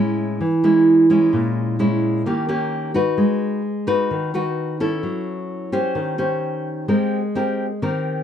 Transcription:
Already playing: A2 G#3 C#4 E4
0.41 E3
0.64 G#3 C#4 E4
1.10 G#3 C#4 E4
1.33 A#2
1.79 G#3 C#4 E4
2.26 D#3 A#3 C#4 G4
2.48 A#3 C#4 G4
2.94 D#4 F#4 B4
3.18 G#3
3.87 D#4 F#4 B4
4.11 D#3
4.34 D#4 F#4 B4
4.80 C#4 E4 A4
5.03 F#3
5.72 C#4 G4 C5
5.95 D#3
6.18 C#4 G4 C5
6.88 G#3 C4 G4 A#4
7.35 C4 G4 A#4
7.82 D#3 C4 G4 A#4

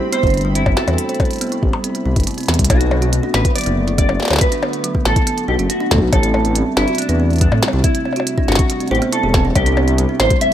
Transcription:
Already playing: C3 G3 A3 C4 E4 G4 B5
0.12 B3 C5, closed hi-hat
0.23 G1 E4, kick, closed hi-hat
0.27 closed hi-hat
0.30 closed hi-hat
0.34 closed hi-hat
0.37 closed hi-hat
0.41 G3, closed hi-hat
0.55 C4 E4, closed hi-hat
0.66 G1, kick, percussion blips
0.77 F#4 A4, snare
0.88 E2 D4, closed hi-hat, percussion blips
0.98 closed hi-hat
1.09 C5, closed hi-hat
1.15 closed hi-hat
1.20 C5, kick, closed hi-hat, percussion blips
1.25 closed hi-hat
1.31 closed hi-hat
1.33 closed hi-hat
1.36 closed hi-hat
1.39 B3, closed hi-hat
1.41 closed hi-hat
1.44 closed hi-hat
1.47 closed hi-hat
1.49 E4, closed hi-hat
1.52 closed hi-hat
1.63 A1, kick
1.73 G3, percussion blips
1.84 C4, closed hi-hat
1.95 closed hi-hat
2.05 C2 E4
2.16 G1 E4, kick, closed hi-hat
2.20 closed hi-hat
2.24 C3, closed hi-hat
2.27 closed hi-hat
2.31 closed hi-hat
2.34 C4, closed hi-hat
2.38 closed hi-hat
2.41 closed hi-hat
2.43 closed hi-hat
2.46 E2 C4, snare, closed hi-hat
2.48 closed hi-hat
2.54 closed hi-hat
2.59 C2, kick, closed hi-hat
2.65 closed hi-hat
2.70 B1 D3 A3 B3 F#4, kick, closed hi-hat, percussion blips
2.81 closed hi-hat
2.91 B3, percussion blips
3.02 F#4, closed hi-hat
3.13 closed hi-hat
3.23 D4
3.34 A1 B3 B4, snare
3.45 kick, closed hi-hat
3.55 F#3 D5, closed hi-hat
3.58 closed hi-hat
3.61 closed hi-hat
3.64 F#1 B3, closed hi-hat
3.66 closed hi-hat
3.87 E4, closed hi-hat
3.98 B3 D5, kick, closed hi-hat
4.09 F#1, percussion blips
4.20 B3, snare
4.22 snare
4.25 snare
4.28 D2 F#4, snare
4.31 snare, percussion blips
4.33 snare
4.36 snare
4.39 B4, kick, snare, closed hi-hat
4.52 D4, closed hi-hat
4.62 B3, percussion blips
4.73 closed hi-hat
4.84 F#3, closed hi-hat
4.95 B3, kick
5.05 A1 A4, snare
5.16 E4, kick, closed hi-hat
5.27 B3, closed hi-hat
5.38 closed hi-hat
5.48 B1 B3 G4
5.59 F#1 F#4, closed hi-hat
5.70 F#4, closed hi-hat
5.80 D4
5.91 D2 B3, kick, snare
5.95 kick
5.98 B1, kick
6.12 A1 C3 G3 A3 A4, kick, closed hi-hat, percussion blips
6.23 C4, closed hi-hat
6.34 percussion blips
6.45 E4, closed hi-hat
6.55 C4, closed hi-hat
6.77 G1 C4 E4, snare
6.88 F#4, closed hi-hat
6.95 D4, closed hi-hat
6.98 closed hi-hat
7.02 closed hi-hat
7.09 E2 D4, closed hi-hat
7.20 C4
7.31 closed hi-hat
7.33 closed hi-hat
7.36 closed hi-hat
7.38 G3, closed hi-hat
7.41 D4, kick, closed hi-hat
7.52 A2 C4, percussion blips
7.63 snare
7.68 percussion blips
7.73 C2 E4
7.84 C4 E4, kick, closed hi-hat
7.95 closed hi-hat
8.05 C4, percussion blips
8.13 F#4, closed hi-hat, percussion blips
8.20 percussion blips
8.27 closed hi-hat
8.38 D4, kick
8.48 G1 C4 F#4, snare
8.52 snare
8.55 kick, snare, closed hi-hat
8.70 G3, closed hi-hat
8.80 C4, closed hi-hat
8.88 A1 G4 C5, closed hi-hat
8.95 closed hi-hat
9.02 B3, closed hi-hat
9.13 E4 A4, closed hi-hat
9.23 E1 G4
9.34 C4, kick, snare
9.45 D4
9.55 C2 E4 G4, kick, closed hi-hat, percussion blips
9.66 D4, closed hi-hat
9.77 C4, percussion blips
9.88 closed hi-hat
9.98 G3, closed hi-hat
10.09 C4
10.20 A1 C5, snare
10.30 E4, kick, closed hi-hat
10.41 C4 E5, closed hi-hat

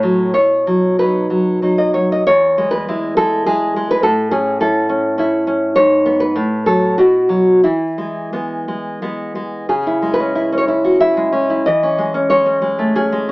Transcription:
Already playing: A2 C#5
0.03 F#3
0.34 B2 C#5
0.67 F#3
0.99 F#3 D#4 B4
1.30 F#3
1.62 F#3 D#4
1.78 D#5
1.94 F#3 C#5
2.12 D#5
2.27 E2 C#5
2.58 G#3
2.71 B4
2.88 G#3 E4
3.17 G#3 A4
3.46 G#3 E4 G#4
3.76 G#3
3.91 B4
4.03 A2 A4
4.31 C#4 G#4
4.60 C#4 E4 A4
4.89 C#4
5.18 C#4 E4
5.47 C#4
5.76 G#2 C#5
6.06 B3
6.20 B4
6.36 A2
6.66 F#3 A4
6.98 B2 F#4
7.29 F#3
7.64 E3 E4
7.98 G#3
8.33 G#3 B3
8.68 G#3
9.02 G#3 B3
9.35 G#3
9.69 C#3 G#4
9.87 E4
10.02 G#3
10.14 B4
10.20 C#4
10.35 E4
10.53 C#4
10.58 C#5
10.68 E4
10.84 F#4
11.00 E4 E5
11.17 G#3
11.33 C#4
11.50 E4
11.66 E3 D#5
11.83 C#4
11.98 G#3
12.14 C#4
12.30 G#3 C#5
12.46 C#4
12.62 G#3
12.79 A3
12.95 C#4 G#4
13.12 G#3

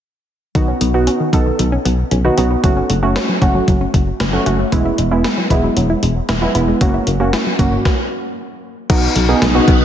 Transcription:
0.55 B1 D#3 B3 D#4 F#4, kick, closed hi-hat
0.68 C#4
0.81 B1 B3, closed hi-hat
0.94 B3 D#4 F#4
1.07 C#4, closed hi-hat
1.20 D#3
1.33 B1 D#3 B3 D#4 A4, kick, closed hi-hat
1.46 D#3
1.59 B1 D#3, closed hi-hat
1.72 C#4
1.85 B1 B3, closed hi-hat
2.11 B1 C#4, closed hi-hat
2.25 D#3 B3 D#4 F#4
2.38 B1 B3 C#4 D#4 F#4, closed hi-hat
2.51 B3
2.64 F#1 F#3 A3 C#4 F#4, kick, closed hi-hat
2.77 C#4
2.90 F#1 A3, closed hi-hat
3.03 A3 C#4 F#4
3.16 C#4, snare, closed hi-hat
3.29 F#3
3.42 F#1 F#3 A3 C#4 F#4, kick, closed hi-hat
3.55 F#3
3.68 F#1 F#3, kick, closed hi-hat
3.81 C#4
3.94 F#1 A3, kick, closed hi-hat
4.20 F#1 C#4, snare, closed hi-hat
4.33 F#3 A3 C#4 F#4
4.46 F#1 A3 C#4 F#4, closed hi-hat
4.59 A3
4.72 E1 F#3 G#3 B3 E4, kick, closed hi-hat
4.85 E4
4.98 E1 G#3, closed hi-hat
5.11 G#3 B3 E4
5.24 E4, snare, closed hi-hat
5.38 F#3
5.50 E1 F#3 G#3 B3 E4, kick, closed hi-hat
5.64 F#3
5.77 E1 F#3, closed hi-hat
5.90 E4
6.03 E1 G#3, closed hi-hat
6.29 E1 E4, snare, closed hi-hat
6.42 F#3 G#3 B3 E4
6.55 E1 G#3 B3 E4, closed hi-hat
6.68 G#3
6.81 F#1 F#3 A#3 C#4 F#4, kick, closed hi-hat
6.94 E4
7.07 F#1 A#3, closed hi-hat
7.20 A#3 C#4 F#4
7.33 E4, snare, closed hi-hat
7.46 F#3
7.59 F#1 F#3 A#3 C#4 F#4, kick, closed hi-hat, mid tom
7.72 F#3
7.85 kick, snare
8.90 B1 C#3 B3 D#4 F#4, kick, closed hi-hat, crash
9.16 B1, closed hi-hat
9.29 B3 D#4 G#4
9.42 B1, snare, closed hi-hat
9.55 B3 D#4 F#4
9.68 B1, kick, closed hi-hat, cowbell

